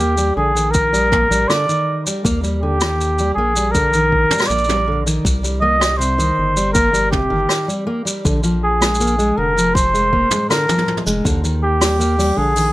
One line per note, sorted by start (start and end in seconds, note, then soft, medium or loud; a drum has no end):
0.00 0.32 D#2 loud
0.00 0.17 A#3 medium
0.00 0.33 G4 medium
0.00 shaker medium
0.17 0.35 G3 medium
0.17 shaker soft
0.36 1.26 A#1 medium
0.36 0.54 D3 medium
0.36 0.73 G#4 medium
0.55 0.91 D#3 medium
0.55 shaker medium
0.71 1.50 A#4 medium
0.71 kick loud
0.71 shaker medium
0.93 1.11 G3 medium
0.93 shaker soft
1.12 1.30 A#3 medium
1.12 kick loud
1.12 mid tom medium
1.30 1.46 A#1 medium
1.30 1.48 G3 medium
1.30 shaker medium
1.49 1.67 D3 medium
1.49 2.05 D5 medium
1.49 cross-stick medium
1.49 shaker medium
1.69 2.04 D#3 medium
1.69 shaker soft
2.07 2.24 G3 medium
2.07 shaker medium
2.24 3.32 D#2 medium
2.24 2.43 A#3 loud
2.24 kick loud
2.24 shaker medium
2.43 2.60 G3 medium
2.43 shaker soft
2.61 2.79 D3 medium
2.61 3.33 G4 medium
2.81 3.17 D#3 medium
2.81 cross-stick medium
2.81 shaker medium
3.01 shaker medium
3.19 3.37 G3 medium
3.19 shaker soft
3.35 4.26 A#1 medium
3.35 3.56 A#3 medium
3.35 3.73 G#4 medium
3.56 3.73 G3 medium
3.56 shaker medium
3.71 4.49 A#4 loud
3.71 kick loud
3.71 shaker medium
3.75 3.92 D3 medium
3.93 4.30 D#3 medium
3.93 shaker soft
4.12 kick medium
4.31 4.49 G3 medium
4.31 mid tom medium
4.31 shaker medium
4.38 cross-stick medium
4.38 shaker medium
4.45 5.05 D5 loud
4.45 shaker soft
4.50 5.20 A#1 medium
4.50 4.68 A#3 medium
4.50 shaker medium
4.50 shaker soft
4.58 shaker soft
4.64 shaker soft
4.68 4.85 G3 medium
4.68 mid tom medium
4.68 shaker soft
4.88 5.04 D3 medium
5.06 5.25 D#3 medium
5.06 shaker medium
5.25 6.32 C2 loud
5.25 kick loud
5.25 shaker medium
5.43 5.61 G3 medium
5.43 shaker soft
5.61 5.80 A#3 medium
5.61 5.99 D#5 medium
5.80 5.97 G3 medium
5.80 cross-stick medium
5.80 shaker medium
5.97 6.16 C3 medium
5.97 6.73 C5 medium
5.97 shaker medium
6.18 6.54 D#3 medium
6.18 shaker medium
6.38 7.26 G1 medium
6.56 6.74 G3 medium
6.56 shaker medium
6.73 6.93 A#3 medium
6.73 7.09 A#4 medium
6.73 kick loud
6.73 shaker medium
6.93 7.10 G3 medium
6.93 shaker medium
7.12 7.29 C3 medium
7.12 7.83 G4 medium
7.12 kick loud
7.12 mid tom medium
7.30 7.47 G1 medium
7.30 7.66 D#3 medium
7.49 cross-stick medium
7.49 shaker medium
7.68 7.86 G3 medium
7.68 shaker soft
7.87 8.05 A#3 loud
8.05 8.23 G3 medium
8.05 shaker medium
8.25 9.33 A#1 loud
8.25 8.42 D3 medium
8.25 kick loud
8.25 shaker medium
8.43 8.79 F3 medium
8.43 shaker soft
8.63 9.39 G#4 medium
8.80 8.99 G#3 medium
8.80 cross-stick medium
8.80 shaker medium
8.94 shaker medium
9.00 9.18 A#3 loud
9.00 shaker medium
9.07 shaker soft
9.18 9.35 G#3 medium
9.18 shaker soft
9.37 10.26 F1 medium
9.37 9.54 D3 medium
9.37 9.76 A#4 medium
9.56 9.92 F3 medium
9.56 shaker medium
9.75 10.49 C5 loud
9.75 kick loud
9.75 shaker medium
9.94 10.11 G#3 medium
9.94 shaker soft
10.13 10.30 A#3 medium
10.13 kick medium
10.31 10.48 G#3 medium
10.31 mid tom medium
10.31 shaker medium
10.49 10.67 D3 medium
10.49 11.02 A#4 medium
10.49 cross-stick medium
10.49 shaker medium
10.69 11.04 F3 medium
10.69 mid tom medium
10.69 shaker soft
10.78 mid tom medium
10.88 mid tom soft
10.97 mid tom soft
11.06 11.22 F1 medium
11.06 11.24 G#3 medium
11.06 shaker medium
11.24 12.32 D#2 medium
11.24 11.42 D3 medium
11.24 kick loud
11.24 shaker medium
11.44 11.79 D#3 medium
11.44 shaker soft
11.63 12.39 G4 medium
11.81 11.99 G3 medium
11.81 cross-stick medium
11.81 open hi-hat medium
11.81 shaker medium
11.99 12.18 A#3 medium
11.99 shaker medium
12.19 12.36 G3 medium
12.19 open hi-hat medium
12.19 shaker soft
12.37 12.73 A#1 medium
12.37 12.54 D3 medium
12.37 12.73 G#4 medium
12.56 12.73 D#3 medium
12.56 open hi-hat medium
12.56 shaker medium